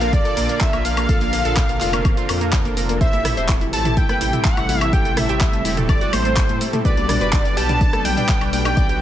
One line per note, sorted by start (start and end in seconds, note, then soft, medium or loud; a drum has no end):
0.00 0.22 A#1 medium
0.00 1.06 A#2 medium
0.00 2.97 D3 medium
0.00 1.06 A#3 medium
0.00 1.07 A#3 medium
0.00 0.10 A#3 medium
0.00 1.06 D4 medium
0.00 1.06 F4 medium
0.00 2.97 F4 medium
0.00 1.06 A4 medium
0.00 1.06 A#4 loud
0.00 0.15 F5 loud
0.00 closed hi-hat medium
0.00 cabasa soft
0.13 0.22 A#3 medium
0.13 0.63 D5 loud
0.13 0.62 D5 loud
0.13 kick loud
0.13 closed hi-hat medium
0.13 cabasa soft
0.25 0.34 A4 medium
0.25 closed hi-hat soft
0.25 cabasa soft
0.37 0.47 A#1 loud
0.37 0.46 A#3 medium
0.37 open hi-hat loud
0.37 cabasa medium
0.49 0.58 A#3 medium
0.49 closed hi-hat medium
0.49 cabasa soft
0.61 0.84 E5 loud
0.61 0.85 E5 loud
0.61 kick loud
0.61 clap loud
0.61 closed hi-hat medium
0.61 cabasa soft
0.73 1.06 A#1 medium
0.73 0.82 A#3 medium
0.73 closed hi-hat soft
0.73 cabasa soft
0.73 high woodblock medium
0.85 0.94 A#3 medium
0.85 2.49 F5 loud
0.85 open hi-hat loud
0.85 cabasa medium
0.97 1.06 A#3 medium
0.97 closed hi-hat medium
0.97 cabasa soft
0.97 high woodblock medium
1.09 1.42 A#1 medium
1.09 1.78 A#2 medium
1.09 1.78 A#3 medium
1.09 2.99 C4 medium
1.09 1.78 D4 medium
1.09 1.78 F4 medium
1.09 1.78 A4 medium
1.09 1.18 A4 loud
1.09 1.78 A#4 medium
1.09 kick loud
1.09 closed hi-hat medium
1.09 cabasa soft
1.21 1.30 A#3 medium
1.21 closed hi-hat soft
1.21 cabasa soft
1.33 1.42 A#3 medium
1.33 open hi-hat loud
1.33 cabasa medium
1.45 1.78 A#1 medium
1.45 1.54 A4 medium
1.45 closed hi-hat medium
1.45 cabasa soft
1.57 1.66 A#3 medium
1.57 kick loud
1.57 clap loud
1.57 closed hi-hat medium
1.57 cabasa soft
1.69 1.78 A#3 medium
1.69 closed hi-hat soft
1.69 cabasa soft
1.81 2.14 F1 medium
1.81 2.98 A#2 medium
1.81 2.98 A#3 medium
1.81 2.98 D4 medium
1.81 1.90 F4 loud
1.81 2.98 F4 medium
1.81 2.98 A4 medium
1.81 2.98 A#4 loud
1.81 clap soft
1.81 open hi-hat loud
1.81 cabasa medium
1.93 2.02 A#3 medium
1.93 closed hi-hat medium
1.93 cabasa soft
1.93 high woodblock medium
2.05 2.14 A#3 medium
2.05 kick loud
2.05 closed hi-hat medium
2.05 cabasa soft
2.05 high woodblock medium
2.17 2.26 F4 loud
2.17 closed hi-hat soft
2.17 cabasa soft
2.29 2.62 F2 loud
2.29 2.38 A#3 medium
2.29 open hi-hat loud
2.29 cabasa medium
2.29 high woodblock medium
2.41 2.50 A#3 medium
2.41 closed hi-hat medium
2.41 cabasa soft
2.53 kick loud
2.53 clap loud
2.53 closed hi-hat medium
2.53 cabasa soft
2.65 2.98 F1 medium
2.65 2.74 A#3 medium
2.65 closed hi-hat soft
2.65 cabasa soft
2.77 2.86 A#3 medium
2.77 open hi-hat loud
2.77 cabasa medium
2.89 2.98 A#3 medium
2.89 closed hi-hat medium
2.89 cabasa soft
3.01 3.34 A1 loud
3.01 6.81 C3 medium
3.01 9.02 G3 medium
3.01 3.70 A3 medium
3.01 3.70 C4 medium
3.01 6.81 E4 medium
3.01 3.70 E4 medium
3.01 3.70 G4 medium
3.01 3.70 A4 medium
3.01 3.10 C5 loud
3.01 3.46 E5 loud
3.01 kick loud
3.01 closed hi-hat medium
3.01 cabasa soft
3.13 3.22 E4 medium
3.13 closed hi-hat soft
3.13 high conga medium
3.13 cabasa soft
3.25 3.34 E4 medium
3.25 cross-stick medium
3.25 mid tom medium
3.25 open hi-hat loud
3.25 cabasa medium
3.37 3.74 E1 loud
3.37 3.46 C5 loud
3.37 closed hi-hat medium
3.37 cabasa soft
3.49 3.58 E4 medium
3.49 kick loud
3.49 clap loud
3.49 closed hi-hat medium
3.49 cabasa soft
3.61 3.70 E4 medium
3.61 closed hi-hat soft
3.61 cabasa soft
3.73 4.06 A1 medium
3.73 4.90 A2 medium
3.73 4.90 A3 medium
3.73 4.90 C4 medium
3.73 4.90 E4 medium
3.73 4.90 G4 medium
3.73 3.82 A4 loud
3.73 4.90 A4 loud
3.73 3.99 A5 loud
3.73 open hi-hat loud
3.73 cabasa medium
3.85 3.94 E4 medium
3.85 closed hi-hat medium
3.85 mid tom medium
3.85 cabasa soft
3.97 4.06 E4 medium
3.97 4.44 G5 loud
3.97 kick loud
3.97 closed hi-hat medium
3.97 cabasa soft
4.09 4.18 B4 medium
4.09 cross-stick medium
4.09 closed hi-hat soft
4.09 high conga loud
4.09 cabasa soft
4.21 4.31 A1 loud
4.21 4.30 E4 medium
4.21 open hi-hat loud
4.21 cabasa medium
4.33 4.42 E4 medium
4.33 closed hi-hat medium
4.33 mid tom medium
4.33 cabasa soft
4.45 4.81 F#5 loud
4.45 kick loud
4.45 clap loud
4.45 closed hi-hat medium
4.45 cabasa soft
4.57 4.90 A1 loud
4.57 4.66 E4 medium
4.57 closed hi-hat soft
4.57 cabasa soft
4.57 high woodblock medium
4.69 4.78 E4 medium
4.69 open hi-hat loud
4.69 high conga medium
4.69 cabasa medium
4.81 4.90 E4 medium
4.81 4.94 E5 loud
4.81 closed hi-hat medium
4.81 cabasa soft
4.81 high woodblock medium
4.93 5.26 A1 medium
4.93 5.62 A2 medium
4.93 5.62 A3 medium
4.93 5.62 C4 medium
4.93 5.62 E4 medium
4.93 5.62 G4 medium
4.93 5.02 G4 loud
4.93 9.02 A4 medium
4.93 5.62 A4 medium
4.93 5.18 G5 loud
4.93 5.19 G5 loud
4.93 kick loud
4.93 closed hi-hat medium
4.93 cabasa soft
5.05 5.14 A3 medium
5.05 closed hi-hat soft
5.05 cabasa soft
5.17 5.26 A3 medium
5.17 5.65 E5 medium
5.17 cross-stick medium
5.17 mid tom medium
5.17 open hi-hat loud
5.17 cabasa medium
5.29 5.62 A1 medium
5.29 5.38 G4 loud
5.29 closed hi-hat medium
5.29 cabasa soft
5.41 5.50 A3 medium
5.41 kick loud
5.41 clap loud
5.41 closed hi-hat medium
5.41 cabasa soft
5.53 5.62 A3 medium
5.53 closed hi-hat soft
5.53 cabasa soft
5.65 5.98 E1 medium
5.65 6.82 A2 medium
5.65 6.82 A3 medium
5.65 6.82 C4 medium
5.65 6.82 E4 medium
5.65 5.74 E4 loud
5.65 6.82 G4 medium
5.65 6.82 A4 loud
5.65 open hi-hat loud
5.65 cabasa medium
5.77 5.86 A3 medium
5.77 closed hi-hat medium
5.77 mid tom loud
5.77 cabasa soft
5.89 5.98 A3 medium
5.89 6.14 D5 loud
5.89 6.15 D5 loud
5.89 kick loud
5.89 closed hi-hat medium
5.89 cabasa soft
5.89 high woodblock medium
6.01 6.10 F#4 loud
6.01 closed hi-hat soft
6.01 cabasa soft
6.13 6.46 A1 medium
6.13 6.22 A3 medium
6.13 6.61 C5 loud
6.13 open hi-hat loud
6.13 high conga medium
6.13 cabasa medium
6.13 high woodblock medium
6.25 6.34 A3 medium
6.25 closed hi-hat medium
6.25 cabasa soft
6.37 kick loud
6.37 clap loud
6.37 closed hi-hat medium
6.37 cabasa soft
6.49 6.59 A2 medium
6.49 6.58 A3 medium
6.49 closed hi-hat soft
6.49 high conga medium
6.49 cabasa soft
6.61 6.70 A3 medium
6.61 open hi-hat loud
6.61 cabasa medium
6.73 6.82 A3 medium
6.73 closed hi-hat medium
6.73 mid tom medium
6.73 high conga loud
6.73 cabasa soft
6.85 7.18 B1 loud
6.85 7.54 B2 medium
6.85 9.02 D3 medium
6.85 7.54 B3 medium
6.85 7.54 D4 medium
6.85 7.54 F#4 medium
6.85 7.54 G4 medium
6.85 6.94 B4 loud
6.85 7.54 B4 medium
6.85 7.58 D5 loud
6.85 kick loud
6.85 closed hi-hat medium
6.85 cabasa soft
6.97 7.06 D4 medium
6.97 closed hi-hat soft
6.97 high conga medium
6.97 cabasa soft
7.09 7.18 D4 medium
7.09 cross-stick medium
7.09 mid tom medium
7.09 open hi-hat loud
7.09 cabasa medium
7.21 7.59 F#1 loud
7.21 7.30 B4 loud
7.21 closed hi-hat medium
7.21 cabasa soft
7.33 7.42 D4 medium
7.33 kick loud
7.33 clap loud
7.33 closed hi-hat medium
7.33 cabasa soft
7.45 7.54 D4 medium
7.45 closed hi-hat soft
7.45 cabasa soft
7.57 7.90 B1 medium
7.57 8.74 B2 medium
7.57 8.74 B3 medium
7.57 8.74 D4 medium
7.57 8.74 G4 medium
7.57 7.66 G4 loud
7.57 8.74 B4 loud
7.57 8.04 A5 loud
7.57 open hi-hat loud
7.57 cabasa medium
7.69 7.78 D4 medium
7.69 closed hi-hat medium
7.69 mid tom loud
7.69 cabasa soft
7.81 7.90 D4 medium
7.81 kick loud
7.81 closed hi-hat medium
7.81 cabasa soft
7.93 8.02 A4 medium
7.93 cross-stick medium
7.93 closed hi-hat soft
7.93 high conga medium
7.93 cabasa soft
8.05 8.15 B1 loud
8.05 8.14 D4 medium
8.05 8.50 G5 loud
8.05 open hi-hat loud
8.05 cabasa medium
8.17 8.26 D4 medium
8.17 closed hi-hat medium
8.17 mid tom medium
8.17 cabasa soft
8.29 kick loud
8.29 clap loud
8.29 closed hi-hat medium
8.29 cabasa soft
8.41 8.74 B1 loud
8.41 8.50 D4 medium
8.41 closed hi-hat soft
8.41 cabasa soft
8.41 high woodblock medium
8.53 8.62 D4 medium
8.53 8.98 G5 loud
8.53 8.98 G5 medium
8.53 open hi-hat loud
8.53 high conga medium
8.53 cabasa medium
8.65 8.74 D4 medium
8.65 closed hi-hat medium
8.65 cabasa soft
8.65 high woodblock medium
8.77 9.02 B1 medium
8.77 9.02 B2 medium
8.77 9.02 B3 medium
8.77 9.02 D4 medium
8.77 9.02 E4 medium
8.77 9.02 F#4 medium
8.77 9.02 G4 medium
8.77 9.02 B4 medium
8.77 8.86 D5 loud
8.77 kick loud
8.77 closed hi-hat medium
8.77 cabasa soft
8.89 8.98 G4 medium
8.89 closed hi-hat soft
8.89 cabasa soft